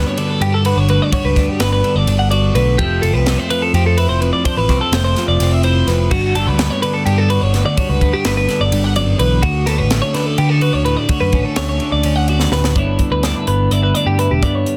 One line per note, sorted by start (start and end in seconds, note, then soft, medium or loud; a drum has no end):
0.00 1.11 G2 medium
0.00 0.17 D3 medium
0.00 0.40 B3 medium
0.00 0.41 D4 medium
0.00 0.65 F#4 medium
0.07 0.19 C#5 medium
0.18 1.83 D3 medium
0.18 0.31 B4 medium
0.18 ride medium
0.31 0.42 A4 medium
0.41 0.72 G2 loud
0.41 0.52 B3 medium
0.41 0.54 G4 medium
0.41 ride loud
0.52 1.12 D4 medium
0.52 0.65 A4 medium
0.65 1.10 F#4 medium
0.65 0.78 B4 medium
0.65 ride medium
0.77 0.98 G1 medium
0.77 0.89 C#5 medium
0.89 1.13 D2 medium
0.89 1.02 B4 medium
0.89 ride medium
1.02 1.13 D5 medium
1.12 2.55 G2 medium
1.12 2.31 F#4 medium
1.12 1.25 C#5 medium
1.12 kick loud
1.12 ride loud
1.24 1.36 C#2 loud
1.24 1.49 B4 medium
1.36 1.47 D2 medium
1.36 2.08 D4 medium
1.36 kick medium
1.36 snare soft
1.36 ride medium
1.49 1.61 G4 medium
1.60 1.81 G1 loud
1.60 2.76 B3 medium
1.60 1.71 B4 medium
1.60 snare loud
1.60 ride loud
1.73 1.96 B4 medium
1.84 2.79 D3 medium
1.84 ride medium
1.95 2.06 G1 medium
1.95 2.19 D5 medium
2.07 2.49 G1 medium
2.07 2.77 D4 medium
2.07 ride medium
2.19 2.30 F#5 medium
2.31 2.77 F#4 medium
2.31 2.55 D5 medium
2.31 ride medium
2.54 2.75 B1 medium
2.54 2.79 D2 medium
2.54 2.79 B4 medium
2.54 ride medium
2.78 4.21 F2 medium
2.78 3.50 F3 medium
2.78 3.26 A3 medium
2.78 3.04 C4 medium
2.78 3.02 G4 medium
2.78 kick loud
2.78 ride medium
2.82 3.98 E4 medium
3.02 3.15 F1 medium
3.02 3.73 C4 medium
3.02 3.14 A4 medium
3.02 ride medium
3.14 3.35 C2 medium
3.14 3.38 B4 medium
3.26 3.40 G3 medium
3.26 snare loud
3.26 ride loud
3.38 4.46 A3 medium
3.38 3.50 C5 medium
3.50 4.42 F3 medium
3.50 3.62 B4 medium
3.50 ride medium
3.62 3.74 A4 medium
3.74 4.05 F2 loud
3.74 4.43 C4 medium
3.74 3.86 G4 medium
3.74 ride medium
3.86 3.98 A4 medium
3.98 4.43 E4 medium
3.98 4.09 B4 medium
3.98 ride medium
4.09 4.30 F1 medium
4.09 4.21 C5 medium
4.21 4.43 F2 medium
4.21 4.33 B4 medium
4.21 ride medium
4.33 4.45 D5 medium
4.45 5.86 F2 medium
4.45 4.58 D4 medium
4.45 4.57 C5 medium
4.45 kick loud
4.45 ride loud
4.57 4.69 A1 loud
4.57 5.64 E4 medium
4.57 4.81 B4 medium
4.69 4.79 C2 medium
4.69 5.41 C4 medium
4.69 kick medium
4.69 snare soft
4.69 ride medium
4.81 4.93 A4 medium
4.92 5.13 F1 loud
4.92 6.10 A3 medium
4.92 5.03 C5 medium
4.92 snare loud
4.92 ride loud
5.04 5.28 C5 medium
5.16 6.09 F3 medium
5.16 snare soft
5.16 ride medium
5.28 5.38 F1 medium
5.28 5.52 D5 medium
5.40 5.81 F1 medium
5.40 6.09 C4 medium
5.40 snare soft
5.40 ride loud
5.52 5.64 E5 medium
5.63 6.09 E4 medium
5.63 5.87 C5 medium
5.63 ride medium
5.87 6.08 F1 medium
5.87 6.08 F2 medium
5.87 6.11 B4 medium
5.87 snare soft
5.87 ride medium
6.11 7.54 G2 medium
6.11 6.35 F#4 medium
6.11 7.30 F#4 medium
6.11 kick loud
6.11 crash medium
6.35 6.48 G1 medium
6.35 7.06 D4 medium
6.35 6.47 A4 medium
6.35 ride medium
6.47 6.68 D2 medium
6.47 6.70 B4 medium
6.59 7.75 B3 medium
6.59 snare loud
6.59 ride loud
6.70 6.82 C#5 medium
6.82 8.47 D3 medium
6.82 6.94 B4 medium
6.82 ride medium
6.94 7.05 A4 medium
7.06 7.37 G2 loud
7.06 8.01 D4 medium
7.06 7.18 G4 medium
7.06 ride loud
7.18 7.30 A4 medium
7.30 7.77 F#4 medium
7.30 7.41 B4 medium
7.30 ride medium
7.41 7.63 G1 medium
7.41 7.53 C#5 medium
7.53 7.78 D2 medium
7.53 7.65 B4 medium
7.53 snare soft
7.53 ride medium
7.66 7.78 D5 medium
7.77 8.72 G2 medium
7.77 9.43 F#4 medium
7.77 7.89 C#5 medium
7.77 kick loud
7.77 ride medium
7.89 8.01 C#2 loud
7.89 8.13 B4 medium
8.01 8.12 D2 medium
8.01 8.14 B3 medium
8.01 kick medium
8.01 ride medium
8.13 9.44 D4 medium
8.13 8.25 G4 medium
8.25 8.46 G1 loud
8.25 9.41 B3 medium
8.25 8.36 B4 medium
8.25 snare loud
8.25 ride loud
8.37 8.61 B4 medium
8.49 10.14 D3 medium
8.49 snare soft
8.49 ride medium
8.60 8.71 G1 medium
8.60 8.84 D5 medium
8.72 9.14 G1 medium
8.72 8.96 G2 medium
8.72 ride loud
8.84 8.96 F#5 medium
8.96 9.19 F#2 medium
8.96 9.19 D5 medium
8.96 ride medium
9.19 9.40 B1 medium
9.19 9.43 E2 medium
9.19 9.43 B4 medium
9.19 ride medium
9.42 11.08 D2 medium
9.42 9.64 D2 loud
9.42 9.66 F#4 medium
9.42 10.61 F#4 medium
9.42 kick loud
9.42 ride loud
9.66 9.81 D2 medium
9.66 9.79 B3 medium
9.66 9.78 A4 medium
9.66 snare soft
9.66 ride medium
9.78 10.00 A1 medium
9.78 10.38 C#4 medium
9.78 10.02 B4 medium
9.90 11.06 A3 medium
9.90 snare loud
9.90 ride loud
10.02 10.14 C#5 medium
10.14 11.80 D3 medium
10.14 10.26 B4 medium
10.14 snare soft
10.14 ride medium
10.26 10.38 A4 medium
10.38 10.69 D3 loud
10.38 10.49 B3 medium
10.38 10.50 G4 medium
10.38 ride loud
10.49 11.09 C#4 medium
10.49 10.62 A4 medium
10.61 11.06 F#4 medium
10.61 10.73 B4 medium
10.61 ride medium
10.73 10.95 D2 medium
10.73 10.85 C#5 medium
10.84 11.06 A2 medium
10.84 10.97 B4 medium
10.84 ride medium
10.97 11.09 D5 medium
11.09 12.76 D2 medium
11.09 12.28 F#4 medium
11.09 11.21 C#5 medium
11.09 kick loud
11.09 ride medium
11.20 11.35 F#2 loud
11.20 11.45 B4 medium
11.32 11.43 A1 medium
11.32 12.04 C#4 medium
11.32 kick medium
11.32 ride medium
11.45 11.57 A4 medium
11.56 11.78 D2 loud
11.56 12.74 A3 medium
11.56 11.68 C#5 medium
11.56 snare loud
11.56 ride loud
11.69 11.92 C#5 medium
11.80 12.75 D3 medium
11.80 ride medium
11.92 12.03 D2 medium
11.92 12.16 D5 medium
12.03 12.46 D2 medium
12.03 12.73 C#4 medium
12.03 ride loud
12.16 12.28 F#5 medium
12.28 12.73 F#4 medium
12.28 12.52 D5 medium
12.28 ride medium
12.40 snare medium
12.52 12.72 D2 medium
12.52 12.73 A2 medium
12.52 12.76 B4 medium
12.52 snare medium
12.64 snare loud
12.76 12.97 G1 medium
12.76 14.42 G2 medium
12.76 13.24 D3 medium
12.76 13.47 B3 medium
12.76 13.25 D4 medium
12.76 13.72 E4 medium
12.76 13.00 C#5 medium
12.76 kick loud
12.76 closed hi-hat medium
12.99 kick medium
12.99 closed hi-hat medium
13.11 13.32 D2 medium
13.11 13.24 B4 medium
13.23 14.77 D3 medium
13.23 13.96 D4 medium
13.23 13.35 D5 medium
13.23 snare loud
13.23 closed hi-hat medium
13.35 13.47 B4 medium
13.47 13.68 G1 medium
13.47 14.43 B3 medium
13.47 13.72 B4 medium
13.47 closed hi-hat medium
13.71 13.92 G1 medium
13.71 14.20 E4 medium
13.71 13.83 D5 medium
13.71 closed hi-hat medium
13.83 13.95 B4 medium
13.95 14.43 D2 medium
13.95 14.77 D4 medium
13.95 14.06 D5 medium
13.95 closed hi-hat medium
14.06 14.27 G2 medium
14.06 14.18 G4 medium
14.19 14.77 E4 soft
14.19 14.31 B4 medium
14.19 closed hi-hat medium
14.31 14.41 E1 medium
14.31 14.43 G4 medium
14.43 14.63 G2 medium
14.43 14.77 G2 medium
14.43 14.77 B3 medium
14.43 14.55 D5 medium
14.43 kick loud
14.43 closed hi-hat medium
14.55 14.77 C#5 medium
14.66 closed hi-hat medium